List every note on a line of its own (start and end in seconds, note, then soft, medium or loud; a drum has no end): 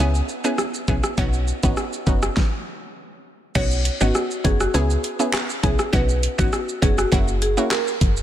0.00 0.22 C#2 loud
0.00 0.16 B3 medium
0.00 0.16 C#4 medium
0.00 0.16 E4 medium
0.00 0.16 G#4 loud
0.15 shaker medium
0.29 shaker soft
0.44 0.60 B3 medium
0.44 0.60 C#4 medium
0.44 0.60 E4 medium
0.44 0.60 G#4 medium
0.44 shaker medium
0.58 cross-stick medium
0.58 shaker medium
0.74 shaker medium
0.88 1.00 B1 medium
0.88 1.05 B3 medium
0.88 1.05 C#4 medium
0.88 1.05 E4 medium
0.88 1.06 G#4 medium
0.88 kick medium
0.88 shaker medium
1.04 cross-stick medium
1.04 shaker medium
1.18 1.52 B1 loud
1.18 1.35 B3 loud
1.18 1.35 C#4 medium
1.18 1.35 D#4 medium
1.18 1.35 F#4 loud
1.18 kick loud
1.18 shaker medium
1.33 shaker medium
1.48 shaker medium
1.63 1.74 G#1 medium
1.63 1.79 B3 medium
1.63 1.79 C#4 medium
1.63 1.79 D#4 medium
1.63 1.79 F#4 medium
1.63 kick loud
1.63 shaker medium
1.77 cross-stick medium
1.77 shaker medium
1.93 shaker medium
2.07 2.29 F#1 medium
2.07 2.24 B3 medium
2.07 2.24 C#4 medium
2.07 2.24 D#4 medium
2.07 2.24 F#4 medium
2.07 kick medium
2.07 shaker medium
2.23 cross-stick loud
2.23 shaker medium
2.37 kick loud
2.37 snare medium
3.55 3.90 B1 loud
3.55 3.72 B3 medium
3.55 3.73 C#4 medium
3.55 3.73 D#4 medium
3.55 3.73 F#4 loud
3.55 3.69 C#5 loud
3.55 kick loud
3.55 crash loud
3.55 shaker medium
3.71 shaker medium
3.85 closed hi-hat medium
3.85 shaker medium
4.01 4.12 G#1 loud
4.01 4.16 B3 medium
4.01 4.16 C#4 medium
4.01 4.17 D#4 medium
4.01 4.13 F#4 medium
4.01 4.17 F#4 medium
4.01 shaker medium
4.15 cross-stick medium
4.15 shaker medium
4.31 shaker medium
4.44 4.67 F#1 medium
4.44 4.62 B3 medium
4.44 4.62 C#4 medium
4.44 4.62 D#4 medium
4.44 4.62 F#4 medium
4.44 4.58 G#4 medium
4.44 kick medium
4.44 closed hi-hat medium
4.44 shaker medium
4.60 4.72 F#4 medium
4.60 cross-stick loud
4.60 shaker medium
4.74 4.97 C#2 loud
4.74 4.91 B3 loud
4.74 4.91 C#4 medium
4.74 4.91 E4 medium
4.74 5.17 G#4 loud
4.74 4.92 G#4 loud
4.74 shaker medium
4.90 shaker medium
5.04 closed hi-hat medium
5.04 shaker soft
5.19 5.35 B3 medium
5.19 5.35 C#4 medium
5.19 5.35 E4 medium
5.19 5.35 G#4 medium
5.19 shaker medium
5.34 cross-stick loud
5.34 clap loud
5.34 shaker medium
5.50 shaker medium
5.63 5.75 B1 medium
5.63 5.80 B3 medium
5.63 5.80 C#4 medium
5.63 5.81 E4 medium
5.63 5.77 G#4 medium
5.63 5.81 G#4 medium
5.63 kick loud
5.63 closed hi-hat medium
5.63 shaker medium
5.79 cross-stick loud
5.79 shaker medium
5.93 6.28 B1 loud
5.93 6.10 B3 loud
5.93 6.10 C#4 medium
5.93 6.10 D#4 medium
5.93 6.10 F#4 loud
5.93 6.18 B4 loud
5.93 kick loud
5.93 shaker medium
6.09 shaker medium
6.23 closed hi-hat medium
6.23 shaker medium
6.38 6.49 G#1 loud
6.38 6.54 B3 medium
6.38 6.54 C#4 medium
6.38 6.54 D#4 medium
6.38 6.50 F#4 medium
6.38 6.54 F#4 medium
6.38 kick loud
6.38 shaker medium
6.53 cross-stick medium
6.53 shaker medium
6.69 shaker medium
6.82 7.05 F#1 medium
6.82 6.99 B3 medium
6.82 6.99 C#4 medium
6.82 6.99 D#4 medium
6.82 6.99 F#4 medium
6.82 6.96 G#4 medium
6.82 kick loud
6.82 closed hi-hat medium
6.82 shaker medium
6.98 7.10 F#4 medium
6.98 cross-stick loud
6.98 shaker medium
7.12 7.57 F#1 loud
7.12 7.29 A#3 loud
7.12 7.29 C#4 medium
7.12 7.29 E4 medium
7.12 7.29 F#4 loud
7.12 kick medium
7.12 shaker medium
7.28 shaker medium
7.42 7.55 G#4 medium
7.42 closed hi-hat medium
7.42 shaker soft
7.57 7.73 A#3 medium
7.57 7.73 C#4 medium
7.57 7.73 E4 medium
7.57 7.73 F#4 medium
7.57 shaker medium
7.71 8.14 A#4 loud
7.71 cross-stick medium
7.71 clap loud
7.71 shaker medium
7.87 shaker medium
8.01 8.22 F#1 medium
8.01 kick loud
8.01 closed hi-hat medium
8.01 shaker medium
8.17 shaker medium